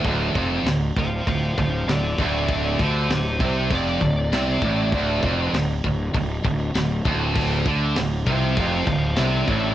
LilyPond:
<<
  \new Staff \with { instrumentName = "Lead electric guitar" } { \time 4/4 \key d \minor \tempo 4 = 99 r4. <c'' f''>8 <c'' f''>8 <c'' f''>8 <a' d''>8 <a' d''>8 | <a' d''>8 <g' c''>8 <g' c''>8 <g' c''>8 d''2~ | d''4 r2. | r4. <c'' f''>8 <c'' f''>8 <c'' f''>8 <a' d''>8 <a' d''>8 | }
  \new Staff \with { instrumentName = "Distorted electric guitar" } { \clef bass \time 4/4 \key d \minor d,8 f,8 d,8 d,8 d,8 d,8 d,8 d,8~ | d,8 d8 d,8 c8 f,8 d,8 c8 a,8 | d,8 f,8 d,8 d,8 d,8 d,8 d,8 d,8~ | d,8 d8 d,8 c8 f,8 d,8 c8 a,8 | }
  \new Staff \with { instrumentName = "Distorted electric guitar" } { \clef bass \time 4/4 \key d \minor d,8 f,8 d,8 d,8 d,8 d,8 d,8 d,8~ | d,8 d8 d,8 c8 f,8 d,8 c8 a,8 | d,8 f,8 d,8 d,8 d,8 d,8 d,8 d,8~ | d,8 d8 d,8 c8 f,8 d,8 c8 a,8 | }
  \new Staff \with { instrumentName = "Fingered electric bass" } { \clef bass \time 4/4 \key d \minor d,,8 f,,8 d,,8 d,,8 d,,8 d,,8 d,,8 d,,8~ | d,,8 d,8 d,,8 c,8 f,,8 d,,8 c,8 a,,8 | d,,8 f,,8 d,,8 d,,8 d,,8 d,,8 d,,8 d,,8~ | d,,8 d,8 d,,8 c,8 f,,8 d,,8 c,8 a,,8 | }
  \new DrumStaff \with { instrumentName = "Drums" } \drummode { \time 4/4 <cymc bd>8 <cymc bd>8 <cymc sn>8 <cymc bd>8 <cymc bd>8 <cymc bd>8 <cymc sn>8 <cymc bd>8 | <cymc bd>8 <cymc bd>8 <cymc sn>8 <cymc bd>8 <cymc bd>8 <cymc bd>8 <cymc sn>8 <cymc bd>8 | <cymc bd>8 <cymc bd>8 <cymc sn>8 <cymc bd>8 <cymc bd>8 <cymc bd>8 <cymc sn>8 <cymc bd>8 | <cymc bd>8 <cymc bd>8 <cymc sn>8 <cymc bd>8 <cymc bd>8 <cymc bd>8 <cymc sn>8 <cymc bd>8 | }
>>